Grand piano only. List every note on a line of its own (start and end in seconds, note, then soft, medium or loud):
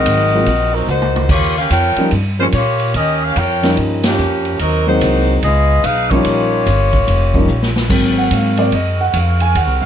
0.00 0.27 F#3 soft
0.00 0.28 G#3 soft
0.00 0.28 A#3 soft
0.00 0.28 C4 soft
0.00 0.28 D#4 medium
0.34 0.46 F#3 medium
0.34 0.46 G#3 soft
0.34 0.46 A#3 medium
0.34 0.46 C4 soft
0.34 0.47 F4 medium
1.98 2.11 F3 medium
1.98 2.11 G3 medium
1.98 2.11 A#3 medium
1.98 2.10 C#4 medium
1.98 2.11 D#4 medium
2.39 2.52 F3 medium
2.39 2.52 G3 soft
2.39 2.52 A#3 medium
2.39 2.52 C#4 soft
2.39 2.52 F4 medium
3.63 4.15 F3 medium
3.63 4.15 G3 medium
3.63 4.16 A#3 medium
3.63 4.15 C#4 medium
3.63 4.16 D#4 medium
4.87 5.39 F#3 medium
4.87 5.39 G#3 medium
4.87 5.39 A#3 medium
4.87 5.39 C4 medium
4.87 5.40 D#4 medium
6.11 6.63 F3 medium
6.11 6.63 G3 medium
6.11 6.64 A#3 medium
6.11 6.63 C#4 medium
6.11 6.64 D#4 medium
7.35 7.47 F3 medium
7.35 7.47 G3 medium
7.35 7.47 A#3 medium
7.35 7.47 C#4 medium
7.35 7.47 D#4 medium
7.89 8.54 F#3 soft
7.89 8.54 A#3 soft
7.89 8.54 C4 medium
8.18 8.31 F#5 medium
8.34 8.58 F5 medium
8.58 8.70 F#3 soft
8.58 8.71 A#3 soft
8.58 8.71 C4 soft
8.58 8.72 D5 medium
8.74 8.99 D#5 medium
9.01 9.14 F#5 medium
9.17 9.41 F5 medium
9.41 9.55 G#5 medium
9.57 9.82 F#5 medium
9.82 9.86 F5 medium